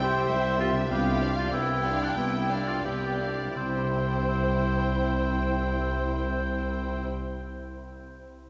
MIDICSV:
0, 0, Header, 1, 8, 480
1, 0, Start_track
1, 0, Key_signature, 0, "major"
1, 0, Tempo, 591133
1, 728, Time_signature, 4, 2, 24, 8
1, 728, Tempo, 633580
1, 1688, Tempo, 688863
1, 6101, End_track
2, 0, Start_track
2, 0, Title_t, "Violin section"
2, 0, Program_c, 0, 48
2, 20, Note_on_c, 0, 76, 36
2, 249, Note_off_c, 0, 76, 0
2, 254, Note_on_c, 0, 79, 39
2, 488, Note_off_c, 0, 79, 0
2, 503, Note_on_c, 0, 76, 35
2, 737, Note_off_c, 0, 76, 0
2, 742, Note_on_c, 0, 79, 38
2, 952, Note_off_c, 0, 79, 0
2, 975, Note_on_c, 0, 77, 33
2, 1205, Note_off_c, 0, 77, 0
2, 1212, Note_on_c, 0, 79, 34
2, 1447, Note_off_c, 0, 79, 0
2, 1450, Note_on_c, 0, 77, 31
2, 1691, Note_on_c, 0, 79, 29
2, 1692, Note_off_c, 0, 77, 0
2, 1906, Note_off_c, 0, 79, 0
2, 1925, Note_on_c, 0, 77, 28
2, 2163, Note_off_c, 0, 77, 0
2, 2164, Note_on_c, 0, 79, 24
2, 2409, Note_on_c, 0, 77, 22
2, 2412, Note_off_c, 0, 79, 0
2, 2652, Note_on_c, 0, 79, 31
2, 2657, Note_off_c, 0, 77, 0
2, 5095, Note_off_c, 0, 79, 0
2, 6101, End_track
3, 0, Start_track
3, 0, Title_t, "Violin section"
3, 0, Program_c, 1, 48
3, 0, Note_on_c, 1, 79, 63
3, 246, Note_on_c, 1, 76, 44
3, 247, Note_off_c, 1, 79, 0
3, 729, Note_off_c, 1, 76, 0
3, 733, Note_on_c, 1, 77, 45
3, 1192, Note_off_c, 1, 77, 0
3, 1209, Note_on_c, 1, 79, 43
3, 2162, Note_on_c, 1, 74, 28
3, 2165, Note_off_c, 1, 79, 0
3, 2406, Note_off_c, 1, 74, 0
3, 2658, Note_on_c, 1, 72, 34
3, 5101, Note_off_c, 1, 72, 0
3, 6101, End_track
4, 0, Start_track
4, 0, Title_t, "Oboe"
4, 0, Program_c, 2, 68
4, 18, Note_on_c, 2, 72, 68
4, 479, Note_off_c, 2, 72, 0
4, 488, Note_on_c, 2, 65, 48
4, 597, Note_off_c, 2, 65, 0
4, 741, Note_on_c, 2, 67, 43
4, 1079, Note_off_c, 2, 67, 0
4, 1091, Note_on_c, 2, 65, 46
4, 1200, Note_off_c, 2, 65, 0
4, 1204, Note_on_c, 2, 64, 50
4, 1587, Note_on_c, 2, 62, 42
4, 1599, Note_off_c, 2, 64, 0
4, 1692, Note_off_c, 2, 62, 0
4, 1696, Note_on_c, 2, 64, 39
4, 2046, Note_on_c, 2, 65, 38
4, 2057, Note_off_c, 2, 64, 0
4, 2160, Note_off_c, 2, 65, 0
4, 2164, Note_on_c, 2, 67, 36
4, 2650, Note_off_c, 2, 67, 0
4, 2666, Note_on_c, 2, 72, 36
4, 5109, Note_off_c, 2, 72, 0
4, 6101, End_track
5, 0, Start_track
5, 0, Title_t, "Harp"
5, 0, Program_c, 3, 46
5, 0, Note_on_c, 3, 48, 43
5, 0, Note_on_c, 3, 60, 38
5, 0, Note_on_c, 3, 64, 36
5, 0, Note_on_c, 3, 72, 37
5, 569, Note_off_c, 3, 48, 0
5, 578, Note_on_c, 3, 48, 34
5, 614, Note_on_c, 3, 62, 32
5, 652, Note_on_c, 3, 65, 29
5, 692, Note_off_c, 3, 60, 0
5, 692, Note_on_c, 3, 71, 31
5, 710, Note_off_c, 3, 64, 0
5, 729, Note_off_c, 3, 72, 0
5, 2613, Note_off_c, 3, 48, 0
5, 2628, Note_off_c, 3, 62, 0
5, 2644, Note_off_c, 3, 65, 0
5, 2655, Note_on_c, 3, 48, 28
5, 2662, Note_off_c, 3, 71, 0
5, 2703, Note_on_c, 3, 60, 27
5, 2752, Note_on_c, 3, 64, 26
5, 2804, Note_on_c, 3, 67, 24
5, 2851, Note_on_c, 3, 72, 27
5, 2900, Note_on_c, 3, 79, 25
5, 5146, Note_off_c, 3, 60, 0
5, 5195, Note_off_c, 3, 64, 0
5, 5247, Note_off_c, 3, 67, 0
5, 5294, Note_off_c, 3, 72, 0
5, 5342, Note_off_c, 3, 79, 0
5, 5373, Note_off_c, 3, 48, 0
5, 6101, End_track
6, 0, Start_track
6, 0, Title_t, "Viola section"
6, 0, Program_c, 4, 48
6, 5, Note_on_c, 4, 60, 39
6, 7, Note_on_c, 4, 67, 40
6, 242, Note_off_c, 4, 60, 0
6, 243, Note_off_c, 4, 67, 0
6, 254, Note_on_c, 4, 64, 38
6, 256, Note_on_c, 4, 72, 39
6, 488, Note_off_c, 4, 64, 0
6, 489, Note_off_c, 4, 72, 0
6, 489, Note_on_c, 4, 60, 37
6, 494, Note_on_c, 4, 67, 39
6, 730, Note_off_c, 4, 60, 0
6, 732, Note_off_c, 4, 67, 0
6, 738, Note_on_c, 4, 59, 35
6, 739, Note_on_c, 4, 71, 35
6, 950, Note_off_c, 4, 59, 0
6, 950, Note_off_c, 4, 71, 0
6, 973, Note_on_c, 4, 74, 32
6, 976, Note_on_c, 4, 62, 30
6, 1204, Note_off_c, 4, 74, 0
6, 1206, Note_off_c, 4, 62, 0
6, 1213, Note_on_c, 4, 71, 29
6, 1216, Note_on_c, 4, 59, 30
6, 1448, Note_off_c, 4, 71, 0
6, 1449, Note_off_c, 4, 59, 0
6, 1455, Note_on_c, 4, 62, 30
6, 1455, Note_on_c, 4, 74, 29
6, 1694, Note_off_c, 4, 62, 0
6, 1694, Note_off_c, 4, 74, 0
6, 1698, Note_on_c, 4, 59, 32
6, 1702, Note_on_c, 4, 71, 32
6, 1910, Note_off_c, 4, 59, 0
6, 1912, Note_off_c, 4, 71, 0
6, 1927, Note_on_c, 4, 62, 28
6, 1927, Note_on_c, 4, 74, 29
6, 2163, Note_off_c, 4, 74, 0
6, 2164, Note_off_c, 4, 62, 0
6, 2164, Note_on_c, 4, 59, 28
6, 2166, Note_on_c, 4, 71, 26
6, 2412, Note_off_c, 4, 59, 0
6, 2412, Note_on_c, 4, 62, 24
6, 2413, Note_off_c, 4, 71, 0
6, 2414, Note_on_c, 4, 74, 23
6, 2657, Note_on_c, 4, 64, 35
6, 2658, Note_off_c, 4, 62, 0
6, 2660, Note_off_c, 4, 74, 0
6, 5100, Note_off_c, 4, 64, 0
6, 6101, End_track
7, 0, Start_track
7, 0, Title_t, "Cello section"
7, 0, Program_c, 5, 48
7, 0, Note_on_c, 5, 36, 49
7, 189, Note_off_c, 5, 36, 0
7, 247, Note_on_c, 5, 36, 45
7, 671, Note_off_c, 5, 36, 0
7, 733, Note_on_c, 5, 36, 48
7, 1145, Note_off_c, 5, 36, 0
7, 1206, Note_on_c, 5, 36, 40
7, 1632, Note_off_c, 5, 36, 0
7, 1693, Note_on_c, 5, 36, 37
7, 2106, Note_off_c, 5, 36, 0
7, 2163, Note_on_c, 5, 36, 31
7, 2601, Note_off_c, 5, 36, 0
7, 2661, Note_on_c, 5, 36, 33
7, 5104, Note_off_c, 5, 36, 0
7, 6101, End_track
8, 0, Start_track
8, 0, Title_t, "Double bass section"
8, 0, Program_c, 6, 48
8, 727, Note_on_c, 6, 36, 46
8, 1121, Note_off_c, 6, 36, 0
8, 2654, Note_on_c, 6, 36, 34
8, 5097, Note_off_c, 6, 36, 0
8, 6101, End_track
0, 0, End_of_file